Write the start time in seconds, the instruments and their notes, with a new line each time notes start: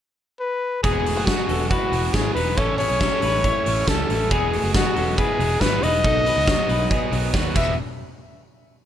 0.40 trumpet B4
0.83 fingered electric bass E1, overdriven electric guitar E3 G#3 B3 F#4, clean electric guitar B3 G#4, trumpet G#4, kick, closed hi-hat
1.06 clean electric guitar A3 F#4, open hi-hat
1.16 fingered electric bass F#1, overdriven electric guitar G#3 B3 F#4
1.26 clean electric guitar B3 G#4, trumpet F#4, kick, snare, closed hi-hat
1.37 overdriven electric guitar G#3 B3 F#4
1.49 fingered electric bass E1, clean electric guitar C#4 A4, open hi-hat
1.70 clean electric guitar E4 B4, trumpet F#4, kick, closed hi-hat
1.92 fingered electric bass E1, overdriven electric guitar E3 G#3 B3 F#4, open hi-hat
2.13 fingered electric bass G#1, overdriven electric guitar E3 G#3 B3 F#4, clean electric guitar E4 C#5, trumpet G#4, kick, snare, closed hi-hat
2.35 fingered electric bass E1, overdriven electric guitar E3 G#3 B3 F#4, clean electric guitar D#4 B4, trumpet B4, open hi-hat
2.57 fingered electric bass A1, overdriven electric guitar A2 E3 A3 C#4 E4, clean electric guitar C#4 A4, trumpet C#5, kick, closed hi-hat
2.78 clean electric guitar B3 G#4, trumpet C#5, open hi-hat
2.90 fingered electric bass B1, overdriven electric guitar A3 C#4 E4
3.01 clean electric guitar C#4 A4, kick, snare, closed hi-hat
3.12 overdriven electric guitar A3 C#4 E4
3.22 fingered electric bass A1, clean electric guitar D#4 B4, open hi-hat
3.44 clean electric guitar E4 C#5, kick, closed hi-hat
3.66 fingered electric bass A1, overdriven electric guitar E3 A3 C#4 E4, open hi-hat
3.88 fingered electric bass C#2, overdriven electric guitar E3 A3 C#4 E4, clean electric guitar C#4 A4, trumpet A4, kick, snare, closed hi-hat
4.09 fingered electric bass A1, overdriven electric guitar E3 A3 C#4 E4, open hi-hat
4.31 fingered electric bass E1, overdriven electric guitar E3 G#3 B3 F#4, clean electric guitar B3 G#4, trumpet G#4, kick, closed hi-hat
4.53 clean electric guitar A3 F#4, open hi-hat
4.64 fingered electric bass F#1, overdriven electric guitar G#3 B3 F#4
4.74 clean electric guitar B3 G#4, trumpet F#4, kick, snare, closed hi-hat
4.86 overdriven electric guitar G#3 B3 F#4
4.96 fingered electric bass E1, clean electric guitar C#4 A4, open hi-hat
5.18 clean electric guitar E4 B4, trumpet G#4, kick, closed hi-hat
5.39 fingered electric bass E1, overdriven electric guitar E3 G#3 B3 F#4, open hi-hat
5.61 fingered electric bass G#1, overdriven electric guitar E3 G#3 B3 F#4, clean electric guitar E4 C#5, trumpet B4, kick, snare, closed hi-hat
5.83 fingered electric bass E1, overdriven electric guitar E3 G#3 B3 F#4, clean electric guitar D#4 B4, trumpet D#5, open hi-hat
6.04 fingered electric bass B1, overdriven electric guitar B2 D#3 F#3 B3 F#4, clean electric guitar D#4 A4, kick, closed hi-hat
6.26 clean electric guitar D#4 B4, open hi-hat
6.36 fingered electric bass C#2, overdriven electric guitar F#3 B3 F#4
6.47 clean electric guitar F#4 C#5, kick, snare, closed hi-hat
6.58 overdriven electric guitar F#3 B3 F#4
6.69 fingered electric bass B1, clean electric guitar D#4 B4, open hi-hat
6.91 clean electric guitar B3 G#4, kick, closed hi-hat
7.11 fingered electric bass B1, overdriven electric guitar D#3 F#3 B3 F#4, open hi-hat
7.34 fingered electric bass D#2, overdriven electric guitar D#3 F#3 B3 F#4, clean electric guitar B3 F#4, kick, snare
7.55 fingered electric bass E1, overdriven electric guitar E3 G#3 B3 F#4, clean electric guitar B3, trumpet E5, kick, crash